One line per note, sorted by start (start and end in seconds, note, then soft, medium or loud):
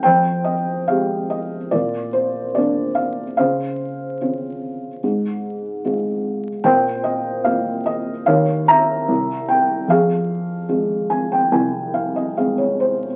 0.03 1.69 F2 medium
0.03 1.69 C5 medium
0.03 0.47 G5 medium
0.44 0.89 D#5 medium
0.88 1.56 G#3 soft
0.88 1.56 F4 soft
0.88 1.57 G4 soft
0.88 1.31 F5 medium
1.30 1.74 D#5 medium
1.71 3.34 A#2 medium
1.71 2.56 F4 medium
1.71 2.11 D5 medium
2.13 2.57 C5 medium
2.55 3.23 A#3 soft
2.55 3.23 D4 soft
2.55 3.23 F4 soft
2.55 2.98 D5 medium
2.95 3.36 F5 medium
3.37 4.99 C#3 medium
3.37 4.99 C5 medium
3.37 4.98 F5 medium
4.21 4.87 C4 soft
4.21 4.87 C#4 soft
4.21 4.87 F4 soft
5.04 6.60 G#2 medium
5.85 6.48 G#3 soft
5.85 6.48 C4 soft
5.85 6.49 F4 soft
6.64 8.23 A#2 medium
6.64 8.23 C5 medium
6.64 7.01 G5 medium
7.04 7.46 D#5 medium
7.44 8.11 A#3 soft
7.44 8.10 C4 soft
7.44 8.11 F4 soft
7.44 7.87 F5 medium
7.86 8.28 D#5 medium
8.26 9.06 D#2 medium
8.26 9.04 C#5 medium
8.26 8.68 F5 medium
8.68 9.85 E5 medium
8.68 9.51 A#5 medium
9.09 9.86 C2 medium
9.48 9.90 G5 medium
9.88 13.16 F2 medium
9.88 12.34 G#4 medium
9.88 11.92 F5 medium
10.69 11.35 G#3 soft
10.69 11.35 C4 soft
10.69 11.35 F4 soft
11.10 11.29 G#5 medium
11.32 11.51 G5 medium
11.52 13.16 C2 medium
11.52 11.91 G#5 medium
11.94 12.14 F5 medium
12.16 12.36 D#5 medium
12.37 13.05 G#3 soft
12.37 13.06 C4 soft
12.37 13.06 F4 soft
12.37 12.57 F5 soft
12.58 12.78 C#5 medium
12.80 13.16 C5 medium